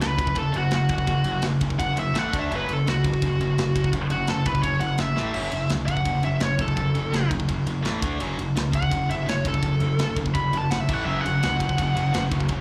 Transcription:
0.00 C#2 F#2 C#3 B4, snare, ride
0.17 F#2 C#3, kick, ride
0.27 kick
0.35 F#1 F#2 C#3 A4, kick, ride
0.52 F#1 F#2 C#3, ride
0.57 F#4
0.71 F#1 F#2 C#3 F#4, snare, ride
0.89 F#1 F#2 C#3, kick, ride
0.98 kick
1.06 F#1 F#2 C#3, kick, ride
1.24 F#1 F#2 C#3, ride
1.42 F#1 F#2 C#3, snare, ride
1.61 F#1 F#2 C#3, kick, ride
1.70 kick
1.78 F#1 F#2 C#3 F#5, kick, ride
1.96 F#1 F#2 C#3 E5, ride
2.14 A1 A2 E3 A3, snare, ride
2.18 F#5
2.31 D2 D3 A3 D4, kick, ride
2.39 E5
2.50 F#1 F#2 C#3 F#3, ride
2.56 B4
2.67 F#1 F#2 C#3, ride
2.73 A4
2.87 C#2 F#2 C#3 F#4, snare, ride
3.04 F#2 C#3, kick, ride
3.14 kick
3.22 F#1 F#2 C#3, kick, ride
3.40 F#1 F#2 C#3, ride
3.58 F#1 F#2 C#3, snare, ride
3.75 F#1 F#2 C#3, kick, ride
3.84 kick
3.93 F#1 F#2 C#3, kick, ride
4.10 F#1 F#2 C#3 F#4, ride
4.27 F#1 F#2 C#3 A4, snare, ride
4.45 F#1 F#2 C#3 B4, kick, ride
4.55 kick
4.62 F#1 F#2 C#3 C#5, kick, ride
4.80 F#1 F#2 C#3 F#5, ride
4.98 F#1 F#2 C#3 E5, snare, ride
5.16 A1 A2 E3 A3, snare
5.33 F#1 F#2 C#3 F#3, crash
5.52 F#1 F#2 C#3, ride
5.69 C#2 F#2 C#3, snare, ride
5.86 F#2 C#3 F#5, kick, ride
5.97 kick
6.05 F#1 F#2 C#3, kick, ride
6.23 F#1 F#2 C#3 E5, ride
6.40 F#1 F#2 C#3 C#5, snare, ride
6.59 F#1 F#2 C#3 A4, kick, ride
6.68 kick
6.76 F#1 F#2 C#3, kick, ride
6.93 F#1 F#2 C#3, ride
7.12 F#1 F#2 C#3, snare, ride
7.31 F#1 F#2 C#3, kick, ride
7.40 kick
7.48 F#1 F#2 C#3, kick, ride
7.65 F#1 F#2 C#3, ride
7.83 A1 A2 E3 A3, snare, ride
8.01 D2 D3 A3 D4, kick, ride
8.18 F#1 F#2 C#3 F#3, ride
8.38 F#1 F#2 C#3, ride
8.56 C#2 F#2 C#3, snare, ride
8.72 F#2 C#3 F#5, kick, ride
8.82 kick
8.90 F#1 F#2 C#3, kick, ride
9.09 F#1 F#2 C#3 E5, ride
9.26 F#1 F#2 C#3 C#5, snare, ride
9.44 F#1 F#2 C#3 A4, kick, ride
9.54 kick
9.63 F#1 F#2 C#3, kick, ride
9.80 F#1 F#2 C#3, ride
9.99 F#1 F#2 C#3, snare, ride
10.16 F#1 F#2 C#3, kick, ride
10.26 kick
10.34 F#1 F#2 C#3 B5, kick, ride
10.52 F#1 F#2 C#3, ride
10.57 A5
10.70 G1 F#2 C#3 F#5, snare, ride
10.80 E5
10.89 A1 A2 E3 A3, kick, crash
10.93 F#5
11.05 F#1 F#2 C#3 F#3 E5
11.20 F#3 F#5
11.25 F#1 F#2 C#3, ride
11.43 C#2 F#2 C#3 F#3, snare, ride
11.59 F#2 C#3 F#3, kick, ride
11.69 kick
11.77 F#1 F#2 C#3 F#3, kick, ride
11.95 F#1 F#2 C#3 F#3, ride
12.13 F#1 F#2 C#3 F#3, snare, ride
12.31 F#1 F#2 C#3 F#3, kick, ride
12.40 kick
12.48 F#1 F#2 C#3 F#3, kick, ride

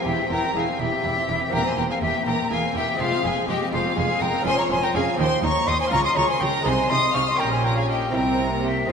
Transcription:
0.01 C4 G4
0.05 E1 E2 E4 G4 E5 G5
0.18 C4
0.30 E1 E2 E4 A#4 G5 A#5
0.43 C4
0.55 E1 E2 E4 G#4 F5 G#5
0.68 C4
0.79 E1 E2 E4 G4 E5 G5
0.92 C4
1.04 E1 E2 E4
1.17 C4
1.28 E1 E2 E4
1.41 C4
1.48 A#3 C4 G4
1.53 E1 E2 A#3 A#4 G5 A#5
1.65 C4 C5 G#5 C6
1.77 E1 E2 A#3 A#4 G5 A#5
1.90 C4 G#4 F5 G#5
2.01 E1 E2 A#3 G4 E5 G5
2.15 C4
2.26 E1 E2 A#3 A#4 G5 A#5
2.39 C4
2.50 E1 E2 A#3 G#4 F5 G#5
2.64 C4
2.75 E1 E2 A#3 G4 E5 G5
2.88 C4
2.95 G#3 C4 G#4
2.99 F1 F2 G#3 F4 C5 F5
3.12 C4
3.23 F1 F2 G#3 G#4 F5 G#5
3.36 C4
3.47 F1 F2 G#3 G4 D#5 G5
3.61 C4
3.72 F1 F2 G#3 F4 C5 F5
3.85 C4
3.97 F1 F2 G#3 G#4 F5 G#5
4.09 C4
4.21 F1 F2 G#3 A#4 G5 A#5
4.33 C4
4.41 G#3 C#4 F4
4.45 F1 F2 C#4 C5 G#5 C6
4.57 C#5 A#5 C#6
4.69 F1 F2 C#4 C5 G#5 C6
4.82 A#4 G5 A#5
4.94 F1 F2 C#4 G#4 F5 G#5
5.14 D#2 C4 D#4 G4
5.19 D#2 C5 G5 C6
5.42 D#2 D#4 C#5 A#5 C#6
5.67 D#2 D#4 D#5 C6 D#6
5.80 C5 G#5 C6
5.87 A#3 C#4 F4
5.91 C#2 C#3 F4 C#5 A#5 C#6
6.04 D#5 C6 D#6
6.16 C#2 C#3 F4 C#5 A#5 C#6
6.29 C5 G#5 C6
6.40 C#2 C#3 F4 A#4 G5 A#5
6.61 G#3 D#4 G#4
6.65 C2 C3 D#4 C5 G#5 C6
6.89 C2 C3 D#4 D#5 C6 D#6
7.14 C2 C3 D#4 F5 C#6 F6
7.27 D#5 C6 D#6
7.35 A#3 C#4 G4
7.39 A#1 A#2 C#4 A#4 G5 A#5
7.52 C5 G#5 C6
7.64 A#4 G5 A#5
7.76 G#4 F5 G#5
7.89 G4 D#5 G5
8.11 C2 C3 C4 E4 A#4 G5 A#5
8.52 A#3
8.64 G4 E5 G5
8.85 G#3 C4 F4

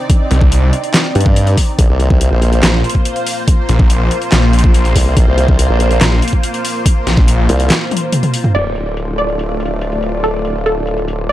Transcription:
Already playing: C4 D#4 D5
0.10 kick, closed hi-hat
0.31 C2, closed hi-hat
0.41 kick
0.52 closed hi-hat
0.73 closed hi-hat
0.84 closed hi-hat
0.94 snare, clap, closed hi-hat
1.15 G2, closed hi-hat
1.21 closed hi-hat
1.26 kick
1.36 closed hi-hat
1.47 closed hi-hat
1.57 kick, open hi-hat
1.79 A#1 A#3 F4 C5, kick, closed hi-hat
1.89 C2
2.00 closed hi-hat
2.10 C2, kick
2.21 closed hi-hat
2.31 A#1
2.42 closed hi-hat
2.53 closed hi-hat
2.63 A#1, snare, clap, closed hi-hat
2.84 closed hi-hat
2.90 closed hi-hat
2.95 kick
3.05 closed hi-hat
3.16 closed hi-hat
3.27 open hi-hat
3.48 kick, closed hi-hat
3.69 A#1, closed hi-hat
3.79 kick
3.90 closed hi-hat
4.11 closed hi-hat
4.22 closed hi-hat
4.32 A#1, snare, clap, closed hi-hat
4.53 closed hi-hat
4.59 closed hi-hat
4.64 kick
4.74 closed hi-hat
4.85 closed hi-hat
4.96 C2, kick, open hi-hat
5.17 A#1, kick, closed hi-hat
5.27 C2
5.38 closed hi-hat
5.48 C2, kick
5.59 closed hi-hat
5.69 A#1
5.80 closed hi-hat
5.91 closed hi-hat
6.01 A#1, snare, clap, closed hi-hat
6.22 closed hi-hat
6.28 closed hi-hat
6.33 kick
6.43 closed hi-hat
6.54 closed hi-hat
6.65 open hi-hat
6.86 kick, closed hi-hat
7.07 A#1, snare, closed hi-hat
7.17 kick
7.28 closed hi-hat
7.49 C2, closed hi-hat
7.60 closed hi-hat
7.70 snare, clap, closed hi-hat
7.91 closed hi-hat, high tom
7.97 closed hi-hat
8.12 closed hi-hat, mid tom
8.23 closed hi-hat, mid tom
8.34 open hi-hat
8.44 mid tom
8.55 D1 A3 F4 D5, closed hi-hat, crash
8.76 closed hi-hat
8.97 closed hi-hat
9.18 D5, closed hi-hat
9.29 closed hi-hat
9.39 closed hi-hat
9.60 closed hi-hat
9.66 closed hi-hat
9.81 closed hi-hat
9.92 closed hi-hat
10.03 closed hi-hat
10.24 A4, closed hi-hat
10.45 closed hi-hat
10.66 A4, closed hi-hat
10.87 closed hi-hat
10.98 closed hi-hat
11.08 closed hi-hat
11.29 closed hi-hat

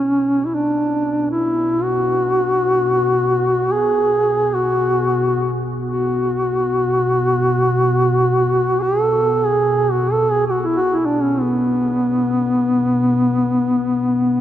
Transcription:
Already playing: B2 C#4
0.46 E4
0.55 D4
1.31 E4
1.83 F#4
3.72 G#4
4.54 F#4
5.90 F#4
8.82 A4
9.45 G#4
9.92 F#4
10.12 A4
10.31 G#4
10.47 F#4
10.61 E4 F#4
10.77 F#4
10.92 E4
11.06 D4
11.22 C#4
11.41 B3

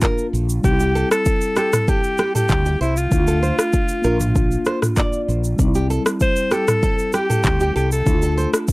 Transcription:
Already playing: A#3 D4 F4
0.01 A#4, kick, clap, shaker
0.18 shaker
0.33 A#1, shaker
0.49 shaker
0.62 C2 G3 C4 G4, kick, shaker
0.67 D#4
0.73 E4
0.80 G4, shaker
0.95 A4, shaker
1.11 A4, cross-stick, shaker
1.25 kick, shaker
1.41 shaker
1.56 G4 A4, cross-stick, shaker
1.73 cross-stick, mid tom, shaker
1.88 G4 A4, kick, shaker
2.04 shaker
2.18 G4, cross-stick, shaker
2.35 G4 A4, mid tom, shaker
2.49 D2, kick, clap, shaker
2.66 G4, shaker
2.81 C2 E4 C5, shaker
2.97 F4, shaker
3.10 D2 A3 D4 E4, kick, shaker
3.19 F4
3.27 A4, shaker
3.43 C5, shaker
3.59 cross-stick, shaker
3.73 kick, shaker
3.88 shaker
4.02 A#1 A#3 D4 A#4, shaker
4.07 F4
4.20 mid tom, shaker
4.36 kick, shaker
4.51 shaker
4.65 C5, cross-stick, shaker
4.82 cross-stick, mid tom, shaker
4.96 D5, kick, clap, shaker
5.13 shaker
5.28 A#1, shaker
5.44 shaker
5.57 C2 G3 C4, kick, shaker
5.62 D#4
5.68 E4
5.74 G4, shaker
5.90 A4, shaker
6.06 cross-stick, shaker
6.20 C5, kick, shaker
6.36 shaker
6.51 G4 A4, cross-stick, shaker
6.68 cross-stick, mid tom, shaker
6.83 A4, kick, shaker
6.99 shaker
7.13 G4, cross-stick, shaker
7.30 A4, mid tom, shaker
7.43 D2, kick, clap, shaker
7.60 G4, shaker
7.76 C2 G4 A4, shaker
7.92 A4, shaker
8.05 D2 A3 D4 E4, kick, shaker
8.14 F4
8.22 A4, shaker
8.38 C5, shaker
8.54 cross-stick, shaker
8.68 kick, shaker

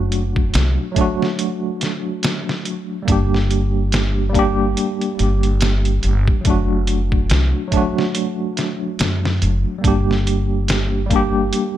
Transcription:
Already playing: F#1 F#3 A3 D4 F#4
0.12 closed hi-hat
0.36 kick
0.54 C2, snare, closed hi-hat
0.91 F#3 A3
0.96 D4, kick, closed hi-hat
1.01 F#4
1.22 snare
1.39 closed hi-hat
1.81 snare, closed hi-hat
2.23 snare, closed hi-hat
2.49 snare
2.65 closed hi-hat
3.02 G3 A#3
3.08 G1 D4, kick, closed hi-hat
3.12 G4
3.34 snare
3.51 closed hi-hat
3.92 snare, closed hi-hat
4.29 G3 A#3
4.35 D4, kick, closed hi-hat
4.39 G4
4.77 closed hi-hat
5.01 closed hi-hat
5.19 G1, closed hi-hat
5.43 closed hi-hat
5.61 snare, closed hi-hat
5.85 closed hi-hat
6.03 G1, closed hi-hat
6.28 kick
6.41 F#3 A3, closed hi-hat
6.45 F#1 D4, kick
6.50 F#4
6.87 closed hi-hat
7.12 kick
7.30 C2, snare, closed hi-hat
7.68 F#3 A3
7.72 D4, kick, closed hi-hat
7.77 F#4
7.98 snare
8.15 closed hi-hat
8.57 snare, closed hi-hat
8.99 F#2, snare, closed hi-hat
9.25 snare
9.42 F#1, closed hi-hat
9.78 G3 A#3
9.84 G1 D4 G4, kick, closed hi-hat
10.11 snare
10.27 closed hi-hat
10.68 snare, closed hi-hat
11.06 G3 A#3
11.11 D4, kick, closed hi-hat
11.16 G4
11.53 closed hi-hat

